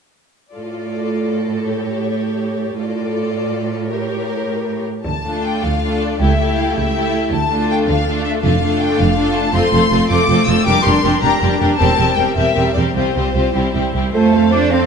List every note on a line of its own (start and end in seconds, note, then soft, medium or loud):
0.54 2.75 A2 soft
0.54 1.63 F4 soft
0.54 2.75 A4 soft
0.54 1.64 D5 soft
1.67 2.75 G4 soft
1.67 2.74 C#5 soft
2.78 4.84 A2 soft
2.78 3.87 F4 soft
2.78 3.87 A4 soft
2.78 3.87 D5 soft
3.90 4.84 G4 soft
3.90 4.83 A#4 soft
3.90 4.83 C#5 soft
5.06 5.55 D2 soft
5.06 5.42 A5 soft
5.25 5.82 A3 soft
5.25 5.82 D4 soft
5.25 5.81 F4 soft
5.25 5.81 A4 soft
5.44 5.63 G5 soft
5.64 6.11 D2 soft
5.64 6.02 F5 soft
5.82 6.20 A3 soft
5.82 6.20 D4 soft
5.82 6.19 F4 soft
5.82 6.18 A4 soft
6.02 6.21 D5 soft
6.19 6.67 C#2 medium
6.19 6.67 C#2 soft
6.19 6.39 A3 soft
6.19 6.39 E4 soft
6.19 6.38 G4 soft
6.19 6.38 A4 soft
6.19 6.58 E5 medium
6.39 6.94 A3 soft
6.39 6.94 E4 soft
6.39 6.92 G4 soft
6.39 6.92 A4 soft
6.58 6.77 F5 soft
6.76 7.23 C#2 soft
6.76 7.32 E5 medium
6.93 7.32 A3 soft
6.93 7.32 E4 soft
6.93 7.31 G4 soft
6.93 7.31 A4 soft
7.32 7.78 D2 soft
7.32 7.79 D2 medium
7.32 7.69 A5 medium
7.50 8.05 A3 soft
7.50 8.05 D4 soft
7.50 8.05 F4 soft
7.50 8.05 A4 soft
7.70 7.77 G5 medium
7.87 8.34 D2 soft
7.87 8.24 F5 medium
8.06 8.41 A3 soft
8.06 8.41 D4 soft
8.06 8.41 F4 soft
8.06 8.41 A4 soft
8.25 8.32 E5 medium
8.42 8.90 F1 medium
8.42 8.90 F2 medium
8.42 8.60 A3 soft
8.42 8.60 D4 soft
8.42 8.60 F4 soft
8.42 8.60 A4 soft
8.42 8.79 F5 medium
8.61 9.15 A3 soft
8.61 9.15 D4 soft
8.61 9.16 F4 soft
8.61 9.16 A4 soft
8.80 8.99 G5 medium
8.98 9.45 F1 medium
8.98 9.45 F2 medium
8.98 9.35 F5 medium
9.16 9.52 A3 soft
9.16 9.53 D4 soft
9.16 9.53 F4 soft
9.16 9.53 A4 soft
9.35 9.54 A5 medium
9.53 9.62 F1 medium
9.53 9.62 F2 medium
9.53 9.71 A3 soft
9.53 9.71 C4 soft
9.53 9.71 F4 medium
9.53 9.71 A4 medium
9.53 10.10 C6 medium
9.72 9.80 F1 medium
9.72 9.80 F2 medium
9.72 9.90 A3 soft
9.72 9.90 C4 soft
9.72 9.89 F4 soft
9.72 9.90 A4 soft
9.90 9.99 F1 medium
9.90 9.99 F2 soft
9.90 10.10 A3 soft
9.90 10.10 C4 soft
9.90 10.07 F4 soft
9.90 10.07 A4 soft
10.09 10.18 F1 medium
10.09 10.18 F2 medium
10.09 10.28 A3 soft
10.09 10.28 C4 soft
10.09 10.27 F4 soft
10.09 10.26 A4 soft
10.09 10.47 D6 medium
10.28 10.37 F1 medium
10.28 10.37 F2 medium
10.28 10.46 A3 soft
10.28 10.46 C4 soft
10.28 10.45 F4 soft
10.28 10.45 A4 soft
10.46 10.56 F1 soft
10.46 10.56 F2 medium
10.46 10.66 A3 soft
10.46 10.66 C4 soft
10.46 10.66 F4 soft
10.46 10.66 A4 soft
10.46 10.66 E6 medium
10.65 10.75 F1 medium
10.65 10.74 F2 medium
10.65 10.83 G3 soft
10.65 10.83 D4 soft
10.65 10.82 G4 medium
10.65 10.82 A#4 medium
10.65 10.85 D6 medium
10.83 10.93 F1 soft
10.83 10.93 F2 medium
10.83 11.03 G3 medium
10.83 11.03 D4 soft
10.83 11.01 G4 soft
10.83 11.01 A#4 soft
10.83 11.23 C6 medium
11.02 11.12 F1 medium
11.02 11.12 F2 soft
11.02 11.22 G3 soft
11.02 11.22 D4 soft
11.02 11.20 G4 soft
11.02 11.20 A#4 soft
11.21 11.31 F1 medium
11.21 11.31 F2 medium
11.21 11.40 G3 soft
11.21 11.41 D4 soft
11.21 11.38 G4 soft
11.21 11.38 A#4 soft
11.21 11.60 A#5 medium
11.39 11.50 F1 medium
11.39 11.50 F2 soft
11.39 11.59 G3 soft
11.39 11.59 D4 soft
11.39 11.58 G4 soft
11.39 11.58 A#4 soft
11.59 11.69 F1 soft
11.59 11.68 F2 medium
11.59 11.78 G3 soft
11.59 11.79 D4 soft
11.59 11.77 G4 soft
11.59 11.77 A#4 soft
11.78 11.88 E1 medium
11.78 11.87 E2 medium
11.78 11.97 G3 soft
11.78 11.96 C4 soft
11.78 11.95 G4 medium
11.78 11.95 A#4 medium
11.78 12.14 A5 medium
11.96 12.07 E1 soft
11.96 12.06 E2 soft
11.96 12.16 G3 soft
11.96 12.16 C4 soft
11.96 12.16 G4 soft
11.96 12.15 A#4 soft
12.16 12.25 E1 soft
12.16 12.25 E2 soft
12.16 12.35 G3 soft
12.16 12.35 C4 soft
12.16 12.36 G4 soft
12.16 12.35 A#4 soft
12.16 12.36 G5 medium
12.35 12.45 E1 soft
12.35 12.44 E2 soft
12.35 12.54 G3 soft
12.35 12.54 C4 soft
12.35 12.54 G4 soft
12.35 12.53 A#4 soft
12.35 12.74 E5 medium
12.54 12.64 E1 soft
12.54 12.64 E2 soft
12.54 12.74 G3 soft
12.54 12.73 C4 soft
12.54 12.74 G4 soft
12.54 12.73 A#4 soft
12.74 12.84 E1 soft
12.74 12.84 E2 soft
12.74 12.94 G3 soft
12.74 12.94 C4 soft
12.74 12.95 G4 soft
12.74 12.94 A#4 soft
12.74 12.82 D5 medium
12.93 13.03 C2 soft
12.93 13.04 C2 soft
12.93 13.14 G3 soft
12.93 13.14 C4 soft
12.93 13.14 F4 soft
12.93 13.14 G4 soft
12.93 13.90 C5 medium
13.15 13.23 C2 soft
13.15 13.34 G3 soft
13.15 13.34 C4 soft
13.15 13.33 F4 soft
13.15 13.32 G4 soft
13.33 13.43 C2 soft
13.33 13.44 C2 soft
13.33 13.54 G3 soft
13.33 13.53 C4 soft
13.33 13.54 F4 soft
13.33 13.52 G4 soft
13.54 13.63 C2 soft
13.54 13.73 G3 soft
13.54 13.73 C4 soft
13.54 13.72 E4 soft
13.54 13.73 G4 soft
13.73 13.82 C2 soft
13.73 13.83 C2 soft
13.73 13.93 G3 soft
13.73 13.93 C4 soft
13.73 13.93 E4 soft
13.73 13.92 G4 soft
13.94 14.02 C2 soft
13.94 14.14 G3 soft
13.94 14.14 C4 soft
13.94 14.13 E4 soft
13.94 14.13 G4 soft
14.13 14.86 F2 soft
14.13 14.33 A3 soft
14.13 14.50 A3 soft
14.13 14.51 A3 soft
14.13 14.32 F4 soft
14.13 14.69 A4 soft
14.13 14.31 C5 soft
14.13 14.32 C5 soft
14.13 14.69 C5 soft
14.13 14.51 A5 soft
14.32 14.52 A3 soft
14.32 14.53 A4 soft
14.32 14.52 C5 soft
14.32 14.52 F5 soft
14.51 14.71 A3 soft
14.51 14.72 D4 soft
14.51 14.72 F4 soft
14.51 14.72 C5 soft
14.51 14.58 D6 soft
14.71 14.86 A3 soft
14.71 14.86 C4 soft
14.71 14.86 A4 soft
14.71 14.86 C5 soft
14.71 14.86 F5 soft
14.71 14.86 C6 soft